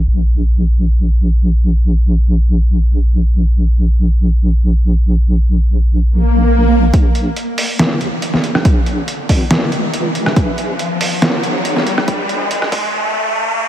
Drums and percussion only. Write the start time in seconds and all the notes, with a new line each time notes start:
6.94 kick, closed hi-hat
7.15 closed hi-hat
7.37 closed hi-hat
7.58 open hi-hat
7.79 snare, closed hi-hat
8.01 closed hi-hat
8.22 closed hi-hat
8.34 snare
8.44 closed hi-hat
8.55 cross-stick
8.65 kick, closed hi-hat
8.86 closed hi-hat
9.08 closed hi-hat
9.29 kick, open hi-hat
9.51 snare, closed hi-hat
9.72 closed hi-hat
9.94 closed hi-hat
10.15 closed hi-hat
10.26 cross-stick
10.36 kick, closed hi-hat
10.58 closed hi-hat
10.79 closed hi-hat
11.01 open hi-hat
11.22 snare, closed hi-hat
11.43 closed hi-hat
11.65 closed hi-hat
11.76 snare
11.87 closed hi-hat
11.98 cross-stick
12.08 kick, closed hi-hat
12.29 closed hi-hat
12.51 closed hi-hat
12.62 cross-stick
12.72 kick, open hi-hat